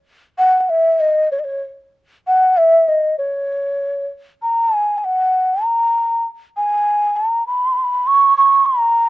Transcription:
0.38 F#5
0.60 F#5
0.69 E5
1.00 D#5
1.32 C#5
1.39 D#5
1.44 C#5
2.27 F#5
2.57 E5
2.88 D#5
3.18 C#5
4.42 A#5
4.76 G#5
4.98 G#5
5.04 F#5
5.64 A#5
6.57 G#5
7.16 A#5
7.47 B5
8.07 C#6
8.37 C#6
8.66 A#5

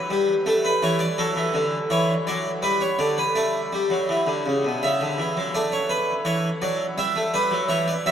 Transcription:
Already playing: B4
0.10 G3
0.46 A3 A4
0.65 B4
0.82 E3 C#5
0.99 D5
1.18 F#3 A4
1.36 E3
1.54 D3
1.90 E3 C#5
2.27 F#3 D5
2.62 G3 B4
2.81 C#5
2.99 D3 D5
3.18 B4
3.35 A3 D5
3.73 G3
3.90 F#3
4.09 E3
4.27 D3
4.46 C#3
4.65 B2
4.83 C#3 E5
5.01 D3
5.18 E3
5.37 F#3
5.55 A3 D5
5.72 C#5
5.89 B4
6.25 E3 C#5
6.62 F#3 D5
6.98 G3 E5
7.16 A3
7.34 G3 B4
7.51 F#3
7.69 E3 C#5
7.88 D5
8.06 F#3 E5

